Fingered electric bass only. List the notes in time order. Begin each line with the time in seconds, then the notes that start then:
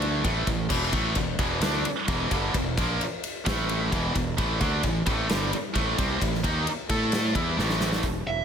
Already playing: D2
0.25 A1
0.47 A1
0.70 E1
0.92 A1
1.16 E1
1.38 E1
1.60 D2
1.85 muted fingered electric bass stroke
2.08 E1
2.31 G1
2.54 E1
2.77 A#1
3.46 A1
3.92 E1
4.15 E1
4.38 A1
4.61 D2
4.84 A1
5.06 A1
5.30 G1
5.53 muted fingered electric bass stroke
5.75 A1
5.99 C2
6.21 A1
6.44 D#2
6.89 A2
7.35 E2
7.58 A1
8.03 E1
8.27 E1